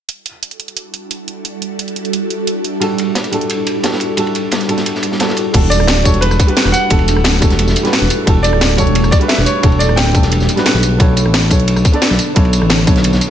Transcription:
0.09 ambient pad G3 D4 E4 F#4 A4, closed hi-hat
0.26 closed hi-hat
0.43 closed hi-hat
0.51 closed hi-hat
0.60 closed hi-hat
0.68 closed hi-hat
0.77 closed hi-hat
0.94 closed hi-hat
1.11 closed hi-hat
1.28 closed hi-hat
1.45 closed hi-hat
1.62 closed hi-hat
1.79 closed hi-hat
1.88 closed hi-hat
1.96 closed hi-hat
2.05 closed hi-hat
2.13 closed hi-hat
2.30 closed hi-hat
2.47 closed hi-hat
2.64 closed hi-hat
2.80 grand piano G3 D4 F#4 A4, closed hi-hat, ride
2.98 closed hi-hat, ride
3.15 snare, closed hi-hat, ride
3.24 closed hi-hat, ride
3.31 grand piano G3 D4 F#4 A4, closed hi-hat, ride
3.41 closed hi-hat
3.50 closed hi-hat, ride
3.67 closed hi-hat, ride
3.83 grand piano G3 D4 F#4 A4, snare, closed hi-hat, ride
3.92 snare
4.00 closed hi-hat, ride
4.17 grand piano G3 D4 F#4 A4, closed hi-hat, ride
4.27 ride
4.35 closed hi-hat, ride
4.51 snare, closed hi-hat, ride
4.61 snare, closed hi-hat
4.68 grand piano G3 D4 F#4 A4, closed hi-hat, ride
4.77 snare, closed hi-hat
4.86 closed hi-hat, ride
4.95 snare
5.03 closed hi-hat, ride
5.12 snare
5.20 grand piano G3 D4 F#4 A4, snare, closed hi-hat, ride
5.29 snare
5.36 closed hi-hat, ride
5.53 analog synth bass E1, grand piano G3 D4 F#4 A4, ambient pad A3 D4 E4 A4, kick, closed hi-hat, crash, ride
5.70 grand piano D5, closed hi-hat, ride, tambourine
5.80 analog synth bass D1, cross-stick
5.87 snare, closed hi-hat, ride
5.96 cross-stick, ride
6.04 analog synth bass E1, grand piano G3 D4 F#4 A4 C#5, kick, closed hi-hat, ride, tambourine
6.14 closed hi-hat
6.21 grand piano B4, closed hi-hat, ride
6.31 analog synth bass E1, cross-stick, tambourine
6.40 kick, closed hi-hat, ride, tambourine
6.47 grand piano G3 D4 F#4 B4, closed hi-hat
6.56 snare, closed hi-hat, ride
6.65 analog synth bass E1, cross-stick, snare
6.72 grand piano F#5, closed hi-hat, ride, tambourine
6.89 analog synth bass E1, grand piano G3 D4 F#4 A4, kick, closed hi-hat, ride
6.99 ride
7.08 closed hi-hat, ride, tambourine
7.16 analog synth bass D1, cross-stick
7.24 snare, closed hi-hat, ride
7.34 cross-stick, snare
7.41 analog synth bass E1, grand piano G3 D4 F#4 A4, kick, closed hi-hat, ride, tambourine
7.50 snare, closed hi-hat
7.59 closed hi-hat, ride
7.67 analog synth bass E1, snare, tambourine
7.76 closed hi-hat, ride, tambourine
7.83 grand piano G3 D4 F#4 B4, snare, closed hi-hat
7.93 snare, closed hi-hat, ride
8.02 analog synth bass E1, snare
8.10 closed hi-hat, ride, tambourine
8.26 analog synth bass E1, grand piano G3 D4 F#4 A4, kick, closed hi-hat, ride
8.43 grand piano D5, closed hi-hat, ride, tambourine
8.53 analog synth bass D1, cross-stick
8.61 snare, closed hi-hat, ride
8.70 cross-stick, ride
8.77 analog synth bass E1, grand piano G3 D4 F#4 A4 C#5, kick, closed hi-hat, ride, tambourine
8.87 closed hi-hat
8.95 closed hi-hat, ride
9.04 analog synth bass E1, cross-stick, tambourine
9.11 grand piano D5, kick, closed hi-hat, ride, tambourine
9.19 grand piano G3 D4 F#4 B4, closed hi-hat
9.28 grand piano E5, snare, closed hi-hat, ride
9.38 analog synth bass E1, cross-stick, snare
9.45 grand piano C#5, closed hi-hat, ride, tambourine
9.62 analog synth bass E1, grand piano G3 D4 F#4 A4, kick, closed hi-hat, ride
9.72 ride
9.79 grand piano D5, closed hi-hat, ride, tambourine
9.89 analog synth bass D1, cross-stick
9.96 grand piano G5, snare, closed hi-hat, ride
10.06 cross-stick, snare
10.13 analog synth bass E1, grand piano F#3 G3 D4 A4, kick, closed hi-hat, ride, tambourine
10.22 snare, closed hi-hat
10.32 closed hi-hat, ride
10.40 analog synth bass E1, snare, tambourine
10.49 closed hi-hat, ride, tambourine
10.56 grand piano G3 D4 F#4 B4, snare, closed hi-hat
10.66 snare, closed hi-hat, ride
10.74 analog synth bass B1, snare
10.83 closed hi-hat, ride, tambourine
10.98 analog synth bass B1, ambient pad D3, grand piano B3 D4 A4 C#5, kick, closed hi-hat, ride
11.17 closed hi-hat, ride, tambourine
11.25 analog synth bass A1, cross-stick
11.34 snare, closed hi-hat, ride
11.43 cross-stick, ride
11.50 analog synth bass B1, grand piano B3 D4 A4 C#5, kick, closed hi-hat, ride, tambourine
11.60 closed hi-hat
11.68 closed hi-hat, ride
11.76 analog synth bass B1, cross-stick, tambourine
11.85 kick, closed hi-hat, ride, tambourine
11.92 grand piano B3 D4 A4 D5, closed hi-hat
12.02 snare, closed hi-hat, ride
12.10 analog synth bass B1, cross-stick, snare
12.19 closed hi-hat, ride, tambourine
12.35 analog synth bass B1, grand piano B3 D4 A4 C#5, kick, closed hi-hat, ride
12.45 ride
12.53 closed hi-hat, ride, tambourine
12.62 analog synth bass A1, cross-stick
12.70 snare, closed hi-hat, ride
12.78 cross-stick, snare
12.86 analog synth bass B1, grand piano B3 D4 A4 C#5, kick, closed hi-hat, ride, tambourine
12.96 snare, closed hi-hat
13.04 closed hi-hat, ride
13.13 analog synth bass B1, snare, tambourine
13.21 closed hi-hat, ride, tambourine

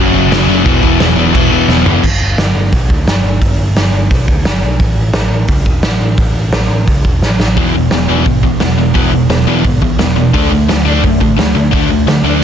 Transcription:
Already playing: picked electric bass F#1, overdriven electric guitar F#2 C#3 F#3
0.13 picked electric bass F#1, overdriven electric guitar F#2 C#3 F#3
0.31 picked electric bass F#1, overdriven electric guitar F#2 C#3 F#3, snare, crash
0.47 picked electric bass F#1, overdriven electric guitar F#2 C#3 F#3
0.64 picked electric bass E1, overdriven electric guitar E2 B2 E3, kick, crash
0.83 picked electric bass E1, overdriven electric guitar E2 B2 E3, kick
1.00 picked electric bass E1, overdriven electric guitar E2 B2 E3, snare, crash
1.16 picked electric bass E1, overdriven electric guitar E2 B2 E3
1.35 picked electric bass E1, overdriven electric guitar E2 B2 E3, kick, crash
1.51 picked electric bass E1, overdriven electric guitar E2 B2 E3
1.68 picked electric bass E1, overdriven electric guitar E2 B2 E3, snare
1.86 picked electric bass F#1, overdriven electric guitar E2 B2 E3, floor tom
2.03 picked electric bass G1, kick, crash
2.21 picked electric bass G1
2.38 picked electric bass G1, snare, open hi-hat
2.55 picked electric bass G1
2.72 picked electric bass B1, kick, open hi-hat
2.89 picked electric bass D2, kick
3.06 picked electric bass G1, snare, open hi-hat
3.24 picked electric bass G1
3.41 picked electric bass G1, kick, open hi-hat
3.59 picked electric bass G1
3.76 picked electric bass G1, snare, open hi-hat
3.92 picked electric bass G1
4.11 picked electric bass B1, kick, open hi-hat
4.28 picked electric bass D2, kick
4.45 picked electric bass G1, snare, open hi-hat
4.62 picked electric bass B1
4.79 picked electric bass A1, kick, open hi-hat
4.98 picked electric bass A1
5.13 picked electric bass A1, snare, open hi-hat
5.31 picked electric bass A1
5.47 picked electric bass C#2, kick, open hi-hat
5.66 picked electric bass E1, kick
5.83 picked electric bass A1, snare, open hi-hat
6.01 picked electric bass A1
6.17 picked electric bass A1, kick, open hi-hat
6.34 picked electric bass A1
6.52 picked electric bass A1, snare, open hi-hat
6.69 picked electric bass A1
6.87 picked electric bass C#2, kick, open hi-hat
7.05 picked electric bass E1, kick
7.21 picked electric bass A1, snare
7.39 picked electric bass A1, snare
7.56 picked electric bass E1, overdriven electric guitar E2 B2 E3, kick, open hi-hat
7.73 picked electric bass E1, overdriven electric guitar E2 B2
7.91 picked electric bass E1, overdriven electric guitar E2 B2, snare, open hi-hat
8.09 picked electric bass E1, overdriven electric guitar E2 B2 E3
8.25 picked electric bass G#1, overdriven electric guitar E2 B2, kick, open hi-hat
8.43 picked electric bass B1, overdriven electric guitar E2 B2, kick
8.60 picked electric bass E1, overdriven electric guitar E2 B2, snare, open hi-hat
8.77 picked electric bass E1, overdriven electric guitar E2 B2
8.94 picked electric bass E1, overdriven electric guitar E2 B2 E3, kick, open hi-hat
9.11 picked electric bass E1, overdriven electric guitar E2 B2
9.28 picked electric bass E1, overdriven electric guitar E2 B2, snare, open hi-hat
9.47 picked electric bass E1, overdriven electric guitar E2 B2 E3
9.64 picked electric bass G#1, overdriven electric guitar E2 B2, kick, open hi-hat
9.82 picked electric bass B1, overdriven electric guitar E2 B2, kick
9.99 picked electric bass E1, overdriven electric guitar E2 B2, snare, open hi-hat
10.16 picked electric bass E1, overdriven electric guitar E2 B2
10.34 picked electric bass D2, overdriven electric guitar D3 A3 D4, kick, open hi-hat
10.51 picked electric bass D2, overdriven electric guitar D3 A3
10.68 picked electric bass D2, overdriven electric guitar D3 A3, snare, open hi-hat
10.85 picked electric bass D2, overdriven electric guitar D3 A3 D4
11.03 picked electric bass F#2, overdriven electric guitar D3 A3, kick, open hi-hat
11.20 picked electric bass A1, overdriven electric guitar D3 A3, kick
11.37 picked electric bass D2, overdriven electric guitar D3 A3, snare, open hi-hat
11.55 picked electric bass D2, overdriven electric guitar D3 A3
11.71 picked electric bass D2, overdriven electric guitar D3 A3 D4, kick, open hi-hat
11.90 picked electric bass D2, overdriven electric guitar D3 A3
12.07 picked electric bass D2, overdriven electric guitar D3 A3, snare, open hi-hat
12.23 picked electric bass D2, overdriven electric guitar D3 A3 D4

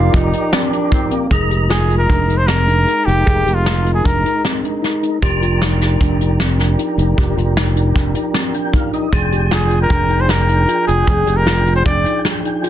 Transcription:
Already playing: tonewheel organ F3 G4 A#4 D5, tine electric piano D#4, alto saxophone F4
0.13 fingered electric bass F1, alto saxophone D#4, tine electric piano F4, kick, closed hi-hat
0.33 tine electric piano D#4, closed hi-hat
0.53 tine electric piano C4, alto saxophone D4, snare, closed hi-hat
0.72 tine electric piano D4, closed hi-hat
0.91 alto saxophone C4, tine electric piano D#4, kick, closed hi-hat
1.11 alto saxophone A#3, tine electric piano C4, closed hi-hat
1.31 fingered electric bass F1, tonewheel organ G#3 D#4 A#4, tine electric piano G#4, kick, closed hi-hat
1.50 tine electric piano G4, closed hi-hat
1.70 tine electric piano F4, trumpet G#4, snare, closed hi-hat
1.89 tine electric piano F4, closed hi-hat
1.98 trumpet A#4
2.09 fingered electric bass F1, tine electric piano D4, kick, closed hi-hat
2.28 tine electric piano D#4, closed hi-hat
2.37 trumpet C5
2.47 tine electric piano C4, trumpet A#4, snare, closed hi-hat
2.68 tine electric piano D4, closed hi-hat
2.87 tine electric piano D#4, closed hi-hat
3.05 fingered electric bass F1, tine electric piano D#4, trumpet G4, closed hi-hat
3.26 tine electric piano G#4, kick, closed hi-hat
3.46 fingered electric bass F1, tine electric piano G4, closed hi-hat
3.55 trumpet F4
3.66 tine electric piano F4, snare, closed hi-hat
3.85 tine electric piano F4, closed hi-hat
3.94 trumpet G#4
4.04 fingered electric bass F1, tine electric piano D4, trumpet A#4, kick, closed hi-hat
4.25 tine electric piano D#4, closed hi-hat
4.44 tine electric piano C4, snare, closed hi-hat
4.63 tine electric piano D4, closed hi-hat
4.82 tine electric piano D#4, snare, closed hi-hat
5.02 tine electric piano D#4, closed hi-hat
5.22 fingered electric bass F1, tonewheel organ F3 D4 G4 A#4, tine electric piano G4, kick, closed hi-hat
5.42 tine electric piano F4, closed hi-hat
5.62 tine electric piano D#4, snare, closed hi-hat
5.81 tine electric piano D#4, snare, closed hi-hat
6.01 fingered electric bass F1, tine electric piano D4, kick, closed hi-hat
6.20 tine electric piano D#4, closed hi-hat
6.40 tine electric piano C4, snare, closed hi-hat
6.59 tine electric piano D4, snare, closed hi-hat
6.79 tine electric piano D#4, closed hi-hat
6.98 fingered electric bass F1, tine electric piano D#4, closed hi-hat
7.17 fingered electric bass F1, tine electric piano G4, kick, closed hi-hat
7.37 fingered electric bass F1, tine electric piano F4, closed hi-hat
7.57 tine electric piano D#4, snare, closed hi-hat
7.76 tine electric piano D#4, closed hi-hat
7.95 fingered electric bass F1, tine electric piano D4, kick, snare, closed hi-hat
8.15 tine electric piano D#4, closed hi-hat
8.34 tine electric piano C4, snare, closed hi-hat
8.54 tine electric piano D4, tonewheel organ G5, closed hi-hat
8.73 tine electric piano D#4, tonewheel organ F5, kick, closed hi-hat
8.93 tine electric piano D#4, tonewheel organ D#5, closed hi-hat
9.13 fingered electric bass F1, tonewheel organ F3 D4 G#4 G5, tine electric piano G#4, kick, closed hi-hat
9.32 tine electric piano G4, closed hi-hat
9.51 tine electric piano F4, trumpet G#4, snare, closed hi-hat
9.70 tine electric piano F4, closed hi-hat
9.82 trumpet A#4
9.90 fingered electric bass F1, tine electric piano D4, kick, closed hi-hat
10.10 tine electric piano D#4, closed hi-hat
10.21 trumpet C5
10.29 tine electric piano D4, trumpet A#4, snare, closed hi-hat
10.49 tine electric piano D#4, closed hi-hat
10.68 tine electric piano F4, closed hi-hat
10.87 fingered electric bass F1, tine electric piano F4, trumpet G#4, closed hi-hat
11.07 fingered electric bass F1, tine electric piano G#4, kick, closed hi-hat
11.27 fingered electric bass F1, tine electric piano G4, closed hi-hat
11.37 trumpet A#4
11.46 tine electric piano F4, snare, closed hi-hat
11.66 tine electric piano F4, closed hi-hat
11.76 trumpet C5
11.86 tine electric piano D4, trumpet D5, kick, closed hi-hat
12.05 tine electric piano D#4, closed hi-hat
12.25 tine electric piano D4, snare, closed hi-hat
12.44 tine electric piano D#4, closed hi-hat
12.63 tine electric piano F4, closed hi-hat

